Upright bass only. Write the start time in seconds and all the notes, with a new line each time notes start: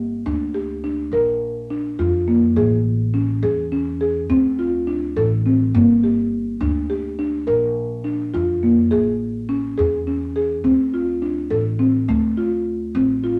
Already playing: G1
0.26 D2
1.11 A#1
1.99 F2
2.56 A1
3.42 E2
4.29 D2
5.16 A1
5.74 G1
6.61 D2
7.47 A#1
8.34 F2
8.91 A1
9.79 E2
10.64 D2
11.50 A1
12.08 D2
12.95 A1